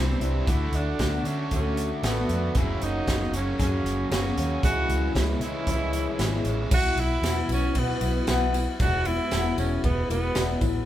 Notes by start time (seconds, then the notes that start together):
Already playing: C2 C3 E3 G3 C4 D4 E4
0.00 C4
0.20 C2 G3 D4 E4, closed hi-hat
0.46 D2 D3 A3 D4 E4 F#4, kick, closed hi-hat
0.72 D2 D4, closed hi-hat
0.99 D2 D3 A3 D4 F#4, kick, snare, closed hi-hat
1.24 D3 A3 C#4 D4 F#4, closed hi-hat
1.28 D3
1.51 D2 D3 A3 C#4 F#4, kick, closed hi-hat
1.77 closed hi-hat
2.03 A1 D3 A3 B3 D4 F#4, snare, closed hi-hat
2.29 F2 A3 D4 F#4, closed hi-hat
2.55 F#1 F#2 C#3 F#3 A#3 C#4 E4 G#4, kick, closed hi-hat
2.59 F#4
2.80 F#1 A#3 C#4 D#4 G#4, closed hi-hat
3.06 F#1 F#3 A#3 C#4 G#4, kick, snare, closed hi-hat
3.32 F#1 F#3 A#3 C#4 F#4, closed hi-hat
3.36 F#2 C#3
3.58 F#2 F#3 A#3 C#4 G#4, kick, closed hi-hat
3.84 F#1, closed hi-hat
4.10 F#1 F#2 C#3 F#3 A#3 C#4 G#4, snare, closed hi-hat
4.14 C#4 F#4
4.36 D#2 A#3 C#4 G#4, closed hi-hat
4.63 C#2 C#3 E3 G#3 C#4 E4 F#4, kick, closed hi-hat
4.89 C#2, closed hi-hat
5.14 C#2 E3 G#3 C#4 E4, kick, snare, closed hi-hat
5.40 C#3 E3 G#3 C#4 E4, closed hi-hat
5.44 C#3
5.67 C#2 C#3 E3 G#3 C#4 E4, kick, closed hi-hat
5.93 closed hi-hat
6.17 G#1 C#3 E3 G#3 C#4 E4, snare, closed hi-hat
6.44 A1 C#4 E4, closed hi-hat
6.48 G#3
6.71 B1 B2 E3 F#3 B3 E4 F#4, kick, crash, tambourine
6.96 B1 E4 F#4, ride
7.00 B3
7.22 E2 B2 E3 B3 E4 F#4, snare, ride, tambourine
7.49 B1, ride, tambourine
7.53 C#4
7.75 B2 E3 B3 E4 F#4, kick, ride
8.00 B1 B3 E4 F#4, ride, tambourine
8.26 B1 B2 E3 B3 E4 F#4, snare, ride, tambourine
8.53 B3 E4 F#4, ride, tambourine
8.80 E1 E2 B2 F#3 G#3 B3 E4 F#4, kick, ride, tambourine
9.05 F#3 G#3 B3 E4, ride
9.31 E1 E2 B2 F#3 G#3 B3 E4, snare, ride, tambourine
9.58 E1 C#4, ride, tambourine
9.83 E1 F#3 G#3 B3 E4, kick, ride
10.09 E1 F#3 G#3 B3 E4, ride, tambourine
10.35 E1 E2 B2 F#3 G#3 B3 E4, snare, ride, tambourine
10.61 A1 F#3 G#3 B3 E4, kick, ride, tambourine